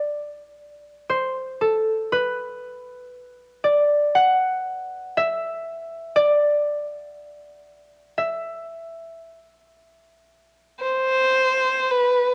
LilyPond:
<<
  \new Staff \with { instrumentName = "Harp" } { \time 4/4 \key d \mixolydian \tempo 4 = 59 d''4 c''8 a'8 b'4. d''8 | fis''4 e''4 d''2 | e''2.~ e''8 r8 | }
  \new Staff \with { instrumentName = "Violin" } { \time 4/4 \key d \mixolydian r1 | r1 | r2 r8 c''4 b'8 | }
>>